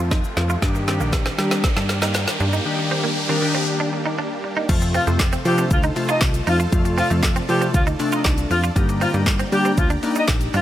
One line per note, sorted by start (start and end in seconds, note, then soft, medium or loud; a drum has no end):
0.00 0.23 F2 medium
0.00 0.58 C3 medium
0.00 0.15 F3 medium
0.00 0.58 F3 medium
0.00 0.58 A3 medium
0.00 0.15 C4 medium
0.00 0.58 F4 medium
0.00 0.15 A4 medium
0.00 0.58 A4 medium
0.00 riser medium
0.11 0.21 D#4 medium
0.11 0.35 C6 medium
0.11 kick loud
0.11 snare medium
0.11 shaker medium
0.24 shaker medium
0.37 0.57 F2 medium
0.37 0.60 F5 medium
0.37 muted clean electric guitar stroke soft
0.37 snare medium
0.37 shaker soft
0.50 0.60 F4 medium
0.50 shaker medium
0.62 1.02 G2 loud
0.62 0.82 D#3 medium
0.62 4.65 D#3 medium
0.62 4.65 G3 medium
0.62 4.65 A#3 medium
0.62 0.82 D4 medium
0.62 2.64 D4 medium
0.62 0.82 G4 medium
0.62 4.65 G4 medium
0.62 kick loud
0.62 snare loud
0.62 closed hi-hat medium
0.62 shaker medium
0.75 muted clean electric guitar stroke soft
0.75 shaker medium
0.87 1.28 D#3 medium
0.87 0.98 C4 medium
0.87 1.28 D4 medium
0.87 1.28 G4 medium
0.87 snare loud
0.87 closed hi-hat medium
0.87 shaker medium
1.00 1.30 A#1 loud
1.00 1.10 A#3 medium
1.00 shaker medium
1.13 kick loud
1.13 snare medium
1.13 clap medium
1.13 closed hi-hat medium
1.13 shaker medium
1.26 1.36 C4 medium
1.26 snare loud
1.26 shaker medium
1.38 2.18 D#3 medium
1.38 1.68 G3 medium
1.38 2.18 D4 medium
1.38 2.19 G4 medium
1.38 muted clean electric guitar stroke soft
1.38 snare loud
1.38 closed hi-hat medium
1.38 shaker medium
1.51 1.61 C4 medium
1.51 snare loud
1.51 shaker medium
1.64 kick loud
1.64 snare loud
1.64 closed hi-hat medium
1.64 shaker medium
1.76 2.26 G2 medium
1.76 1.87 D4 medium
1.76 snare loud
1.76 shaker soft
1.89 muted clean electric guitar stroke soft
1.89 snare loud
1.89 closed hi-hat medium
1.89 shaker medium
2.02 2.12 D#4 medium
2.02 snare loud
2.02 shaker medium
2.14 muted clean electric guitar stroke soft
2.14 snare loud
2.14 clap medium
2.14 closed hi-hat medium
2.14 shaker medium
2.27 snare loud
2.27 shaker medium
2.40 2.60 G2 medium
2.40 2.50 D4 medium
2.40 closed hi-hat soft
2.40 shaker soft
2.53 2.63 D#4 medium
2.53 shaker medium
2.65 3.16 D#3 medium
2.65 3.16 D4 medium
2.65 4.67 D4 medium
2.65 3.16 G4 medium
2.79 muted clean electric guitar stroke soft
2.91 3.01 C4 medium
3.04 3.14 A#3 medium
3.29 3.39 D#3 medium
3.29 3.39 C4 medium
3.29 3.39 D4 medium
3.29 3.39 A#4 medium
3.42 4.22 D#3 medium
3.42 4.22 D4 medium
3.42 4.22 G4 medium
3.42 muted clean electric guitar stroke soft
3.55 3.65 C4 medium
3.80 3.90 D4 medium
3.93 muted clean electric guitar stroke soft
4.06 4.15 D#4 medium
4.19 4.28 D4 medium
4.44 muted clean electric guitar stroke soft
4.57 4.66 D#4 medium
4.69 4.99 F2 loud
4.69 4.99 C3 medium
4.69 4.99 F3 medium
4.69 4.99 A3 medium
4.69 8.72 F4 medium
4.69 4.99 F4 loud
4.69 8.72 A4 medium
4.69 6.70 C5 medium
4.69 8.72 A5 loud
4.69 kick loud
4.69 closed hi-hat medium
4.69 crash loud
4.69 shaker medium
4.82 muted clean electric guitar stroke soft
4.82 closed hi-hat medium
4.82 shaker medium
4.94 5.04 F3 medium
4.94 5.04 C4 medium
4.94 5.03 F4 medium
4.94 open hi-hat medium
4.94 shaker medium
5.07 5.37 F2 loud
5.07 5.37 C3 medium
5.07 5.37 F3 medium
5.07 5.17 A3 medium
5.07 5.37 A3 medium
5.07 5.37 C4 medium
5.07 closed hi-hat soft
5.07 shaker medium
5.20 kick loud
5.20 snare medium
5.20 clap loud
5.20 clap medium
5.20 closed hi-hat medium
5.20 shaker medium
5.33 5.43 C4 medium
5.33 closed hi-hat medium
5.33 shaker medium
5.45 5.85 C3 medium
5.45 5.65 F3 medium
5.45 5.85 F3 medium
5.45 5.63 G3 medium
5.45 5.85 A3 medium
5.45 5.85 D4 medium
5.45 5.62 G4 medium
5.45 muted clean electric guitar stroke soft
5.45 open hi-hat medium
5.45 shaker medium
5.58 5.68 C4 medium
5.58 closed hi-hat medium
5.58 shaker medium
5.71 5.91 D2 loud
5.71 5.80 F3 medium
5.71 5.79 F4 medium
5.71 kick loud
5.71 closed hi-hat medium
5.71 shaker medium
5.83 5.93 D#4 medium
5.83 closed hi-hat soft
5.83 shaker medium
5.96 6.56 C3 medium
5.96 6.56 F3 medium
5.96 6.56 A3 medium
5.96 6.56 F4 medium
5.96 muted clean electric guitar stroke soft
5.96 clap medium
5.96 open hi-hat medium
5.96 shaker medium
6.09 6.18 D#4 medium
6.09 6.19 F4 medium
6.09 6.18 D#5 medium
6.09 closed hi-hat medium
6.09 shaker medium
6.21 6.41 C2 loud
6.21 muted clean electric guitar stroke soft
6.21 kick loud
6.21 snare loud
6.21 clap loud
6.21 clap medium
6.21 closed hi-hat medium
6.21 shaker medium
6.34 closed hi-hat medium
6.34 shaker medium
6.47 6.67 F2 medium
6.47 6.56 F3 medium
6.47 6.57 D#4 medium
6.47 6.56 F4 medium
6.47 open hi-hat medium
6.47 shaker medium
6.60 6.70 F4 medium
6.60 closed hi-hat medium
6.60 shaker medium
6.72 7.02 F2 loud
6.72 7.02 C3 medium
6.72 7.03 F3 medium
6.72 7.03 A3 medium
6.72 7.03 F4 loud
6.72 10.62 D5 medium
6.72 kick loud
6.72 closed hi-hat medium
6.72 shaker medium
6.85 muted clean electric guitar stroke soft
6.85 closed hi-hat medium
6.85 shaker medium
6.98 7.07 F3 medium
6.98 7.08 C4 medium
6.98 7.06 F4 medium
6.98 open hi-hat medium
6.98 shaker medium
7.10 7.41 F2 loud
7.10 7.40 C3 medium
7.10 7.41 F3 medium
7.10 7.20 A3 medium
7.10 7.41 A3 medium
7.10 7.41 F4 medium
7.10 closed hi-hat medium
7.10 shaker medium
7.23 kick loud
7.23 snare medium
7.23 clap loud
7.23 clap medium
7.23 closed hi-hat medium
7.23 shaker medium
7.36 7.46 C4 medium
7.36 closed hi-hat medium
7.36 shaker medium
7.48 7.89 C3 medium
7.48 7.89 F3 medium
7.48 7.69 F3 medium
7.48 7.66 G3 medium
7.48 7.89 A3 medium
7.48 7.89 F4 medium
7.48 7.65 G4 medium
7.48 muted clean electric guitar stroke soft
7.48 open hi-hat medium
7.48 shaker medium
7.61 7.71 C4 medium
7.61 closed hi-hat medium
7.61 shaker medium
7.74 7.94 D2 loud
7.74 7.83 F3 medium
7.74 7.83 F4 medium
7.74 kick loud
7.74 closed hi-hat medium
7.74 shaker medium
7.87 7.97 D#4 medium
7.87 closed hi-hat soft
7.87 shaker soft
7.99 8.59 C3 medium
7.99 8.59 F3 medium
7.99 8.60 A3 medium
7.99 8.60 D4 medium
7.99 muted clean electric guitar stroke soft
7.99 clap medium
7.99 open hi-hat medium
7.99 shaker medium
8.12 8.21 D#4 medium
8.12 8.22 F4 medium
8.12 8.22 D#5 medium
8.12 closed hi-hat medium
8.12 shaker medium
8.25 8.45 C2 loud
8.25 8.35 D#4 medium
8.25 kick loud
8.25 snare loud
8.25 clap medium
8.25 clap loud
8.25 closed hi-hat medium
8.25 shaker medium
8.38 closed hi-hat medium
8.38 shaker medium
8.51 8.70 F2 medium
8.51 8.60 F3 medium
8.51 8.59 F4 medium
8.51 muted clean electric guitar stroke soft
8.51 open hi-hat medium
8.51 shaker medium
8.63 8.73 F4 medium
8.63 closed hi-hat medium
8.63 shaker medium
8.75 9.06 G2 loud
8.75 9.06 D3 loud
8.75 9.06 G3 medium
8.75 9.06 A#3 medium
8.75 9.06 D#4 loud
8.75 10.62 G4 medium
8.75 10.62 G5 medium
8.75 10.62 A#5 medium
8.75 kick loud
8.75 closed hi-hat medium
8.75 shaker medium
8.89 muted clean electric guitar stroke soft
8.89 closed hi-hat medium
8.89 shaker medium
9.01 9.10 F3 medium
9.01 9.11 C4 medium
9.01 9.10 F4 medium
9.01 open hi-hat medium
9.01 shaker medium
9.14 9.44 G2 loud
9.14 9.44 D3 medium
9.14 9.44 G3 medium
9.14 9.24 A#3 medium
9.14 9.44 A#3 medium
9.14 9.44 D#4 medium
9.14 closed hi-hat soft
9.14 shaker medium
9.27 kick loud
9.27 snare medium
9.27 clap medium
9.27 clap loud
9.27 closed hi-hat medium
9.27 shaker medium
9.39 9.49 C4 medium
9.39 closed hi-hat medium
9.39 shaker medium
9.52 9.92 D3 medium
9.52 9.92 G3 medium
9.52 9.72 G3 loud
9.52 9.70 G3 medium
9.52 9.92 A#3 medium
9.52 9.92 D4 medium
9.52 9.69 G4 medium
9.52 muted clean electric guitar stroke soft
9.52 open hi-hat medium
9.52 shaker medium
9.65 9.75 C4 medium
9.65 closed hi-hat medium
9.65 shaker medium
9.77 9.97 D2 loud
9.77 9.87 F3 medium
9.77 9.86 F4 medium
9.77 kick loud
9.77 closed hi-hat medium
9.77 shaker medium
9.90 10.00 D4 medium
9.90 closed hi-hat medium
9.90 shaker soft
10.03 10.62 G3 medium
10.03 10.62 A#3 medium
10.03 10.62 D4 medium
10.03 10.62 D#4 medium
10.03 muted clean electric guitar stroke soft
10.03 clap medium
10.03 open hi-hat medium
10.03 shaker medium
10.15 10.24 D#4 medium
10.15 10.26 D#4 medium
10.15 10.25 D#5 medium
10.15 closed hi-hat medium
10.15 shaker medium
10.28 10.48 A#1 loud
10.28 muted clean electric guitar stroke soft
10.28 kick loud
10.28 snare loud
10.28 clap medium
10.28 clap loud
10.28 closed hi-hat medium
10.28 shaker medium
10.41 closed hi-hat medium
10.41 shaker medium
10.54 10.62 G2 medium
10.54 10.62 F3 medium
10.54 10.62 D4 medium
10.54 10.62 F4 medium
10.54 open hi-hat medium
10.54 shaker medium